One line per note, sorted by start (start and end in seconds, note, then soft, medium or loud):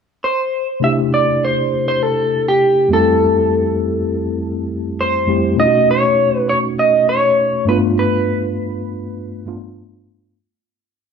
0.24 0.79 C5 medium
0.80 2.86 C3 soft
0.80 2.86 A3 soft
0.80 2.87 D4 soft
0.80 2.87 E4 soft
0.80 0.92 E5 medium
0.84 2.88 G4 medium
1.14 1.43 D5 medium
1.45 1.87 C5 medium
1.88 2.03 C5 medium
2.03 2.48 A4 medium
2.48 2.89 G4 medium
2.89 5.24 F2 medium
2.89 5.25 G3 soft
2.89 5.25 A3 soft
2.89 5.26 C4 medium
2.89 5.26 E4 medium
2.93 5.27 G4 medium
2.93 5.07 A4 medium
5.01 5.56 C5 medium
5.27 5.58 F2 soft
5.27 5.58 G3 soft
5.27 5.56 A3 soft
5.27 5.58 C4 soft
5.27 5.59 E4 soft
5.27 5.59 G4 medium
5.56 7.62 B2 medium
5.56 7.63 A3 medium
5.56 7.64 C#4 soft
5.56 7.64 D#4 soft
5.56 5.90 D#5 medium
5.61 5.66 F4 soft
5.67 7.68 F#4 medium
5.91 6.38 C#5 medium
6.38 6.48 B4 medium
6.49 6.57 C#5 medium
6.79 7.07 D#5 medium
7.09 7.64 C#5 medium
7.65 9.42 G2 medium
7.65 9.43 A3 medium
7.65 9.44 B3 medium
7.65 9.44 D4 medium
7.65 7.77 B4 medium
7.70 9.45 F4 medium
7.99 9.74 B4 medium
9.46 10.36 G2 medium
9.46 10.37 A3 soft
9.46 10.37 B3 soft
9.46 10.37 D4 medium
9.46 10.37 F4 medium